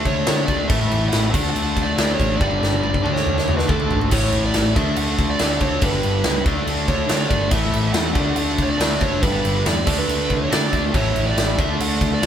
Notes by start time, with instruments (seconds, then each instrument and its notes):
Already playing: overdriven electric guitar D3 A3 D4
0.05 picked electric bass D2, lead electric guitar C#5, kick, crash
0.26 overdriven electric guitar D3 A3 D4, picked electric bass D3, snare, crash
0.46 picked electric bass D2, lead electric guitar D5, kick, crash
0.68 picked electric bass A1, overdriven electric guitar A2 E3 A3, lead electric guitar E5, kick, crash
0.91 picked electric bass A1, crash
1.09 lead electric guitar F#5, snare, crash
1.13 picked electric bass A1
1.31 picked electric bass D2, overdriven electric guitar D3 A3 D4, kick, crash
1.50 lead electric guitar F#5
1.56 picked electric bass D2, crash
1.76 picked electric bass D2, kick, crash
1.82 lead electric guitar D5
1.96 picked electric bass D2, overdriven electric guitar D3 A3 D4, snare, crash
2.14 lead electric guitar C#5
2.19 picked electric bass A1, kick, crash
2.37 picked electric bass G1, overdriven electric guitar G2 D3 G3, lead electric guitar D5, kick
2.51 high tom
2.62 picked electric bass G1, snare
2.73 high tom
2.81 picked electric bass G1, lead electric guitar D5, mid tom
2.94 kick
3.02 picked electric bass D2, overdriven electric guitar D3 A3 D4, mid tom
3.13 lead electric guitar C#5, snare
3.26 picked electric bass D2, mid tom
3.38 snare
3.48 picked electric bass D2, mid tom
3.57 lead electric guitar B4, snare
3.67 overdriven electric guitar D3 A3 D4, picked electric bass D3, lead electric guitar A4, kick
3.80 floor tom
3.91 picked electric bass G#1, floor tom
4.01 floor tom
4.09 picked electric bass A1, overdriven electric guitar A2 E3 A3, lead electric guitar C#5, kick, crash
4.32 picked electric bass A1, crash
4.46 lead electric guitar D5
4.54 picked electric bass A1, snare, crash
4.75 picked electric bass D2, overdriven electric guitar D3 A3 D4, lead electric guitar E5, kick, crash
4.96 picked electric bass D2, lead electric guitar F#5, crash
5.18 picked electric bass D2, kick, crash
5.30 lead electric guitar D5
5.39 picked electric bass D2, overdriven electric guitar D3 A3 D4, snare, crash
5.60 picked electric bass D2, lead electric guitar C#5, kick, crash
5.80 picked electric bass G1, overdriven electric guitar G2 D3 G3, kick, crash
5.85 lead electric guitar B4
6.03 picked electric bass G1, crash
6.24 picked electric bass C#2, snare, crash
6.45 picked electric bass D2, overdriven electric guitar D3 A3 D4, kick, crash
6.67 picked electric bass D2, crash
6.88 picked electric bass D2, lead electric guitar C#5, kick, crash
7.07 overdriven electric guitar D3 A3 D4, picked electric bass D3, snare, crash
7.29 picked electric bass G1, lead electric guitar D5, kick, crash
7.50 picked electric bass A1, overdriven electric guitar A2 E3 A3, lead electric guitar E5, kick, crash
7.73 picked electric bass A1, crash
7.94 picked electric bass E2, lead electric guitar F#5, snare, crash
8.13 picked electric bass D2, overdriven electric guitar D3 A3 D4, kick, crash
8.36 picked electric bass D2, lead electric guitar F#5, crash
8.58 picked electric bass D2, kick, crash
8.62 lead electric guitar C#5
8.70 lead electric guitar D5
8.78 picked electric bass D2, overdriven electric guitar D3 A3 D4, snare, crash
9.01 picked electric bass F#1, lead electric guitar C#5, kick, crash
9.20 picked electric bass G1, overdriven electric guitar G2 D3, lead electric guitar B4, kick, crash
9.24 overdriven electric guitar G3
9.45 picked electric bass G1, crash
9.66 picked electric bass E2, lead electric guitar D5, snare, crash
9.85 picked electric bass D2, overdriven electric guitar D3 A3 D4, kick, crash
9.99 lead electric guitar B4
10.09 picked electric bass D2, crash
10.30 picked electric bass D2, kick, crash
10.43 lead electric guitar C#5
10.49 overdriven electric guitar D3 A3 D4, picked electric bass D3, lead electric guitar D5, snare, crash
10.73 picked electric bass D2, kick, crash
10.93 picked electric bass A1, overdriven electric guitar A2 E3 A3, lead electric guitar C#5, kick, crash
11.16 picked electric bass A1, crash
11.27 lead electric guitar D5
11.37 picked electric bass A1, snare, crash
11.57 picked electric bass D2, overdriven electric guitar D3 A3 D4, lead electric guitar E5, kick, crash
11.80 picked electric bass D2, lead electric guitar F#5, crash
12.01 picked electric bass D2, kick, crash
12.14 lead electric guitar D5
12.21 picked electric bass D2, overdriven electric guitar D3 A3, crash